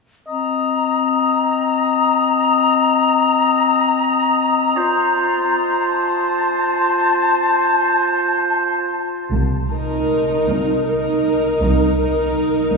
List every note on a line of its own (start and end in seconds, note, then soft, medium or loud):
0.28 4.78 C4 soft
0.28 4.78 D#5 soft
0.28 5.90 A#5 soft
4.77 9.00 F4 medium
4.77 9.00 C5 soft
5.89 9.01 A5 soft
9.33 10.33 C2 soft
9.33 10.06 C2 soft
9.71 10.84 D#4 soft
9.71 10.84 A#4 soft
10.47 11.46 C2 soft
10.86 11.97 D#4 soft
10.86 11.97 A#4 soft
11.61 12.59 C2 soft
11.61 12.33 C2 soft
12.00 12.77 D#4 soft
12.00 12.77 A#4 soft
12.74 12.77 C2 soft